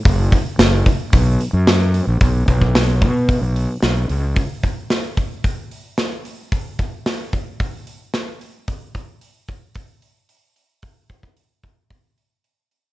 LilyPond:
<<
  \new Staff \with { instrumentName = "Fingered electric bass" } { \clef bass \time 4/4 \key b \dorian \tempo 4 = 111 fis,,8 r8 fis,,8 r8 b,,8 r16 fis,4 ais,,16 | b,,8 b,,4 b,8. b,,8 r16 b,,8 cis,8 | r1 | r1 |
r1 | r1 | }
  \new DrumStaff \with { instrumentName = "Drums" } \drummode { \time 4/4 <hho bd>8 <hho bd>8 <hho sn>8 <hho bd>8 <hho bd>8 hho8 <hho sn>8 hho8 | <hho bd>8 <hho bd>16 bd16 <hho sn>8 <hho bd>8 <hho bd>8 hho8 <hho sn>8 hho8 | <hho bd>8 <hho bd>8 <hho sn>8 <hho bd>8 <hho bd>8 hho8 <hho sn>8 hho8 | <hho bd>8 <hho bd>8 <hho sn>8 <hho bd>8 <hho bd>8 hho8 <hho sn>8 hho8 |
<hho bd>8 <hho bd>8 hho8 <hho bd>8 <hho bd>8 hho8 hho8 hho8 | <hho bd>8 <hho bd>16 bd16 hho8 <hho bd>8 <hho bd>8 hho8 hho8 hho8 | }
>>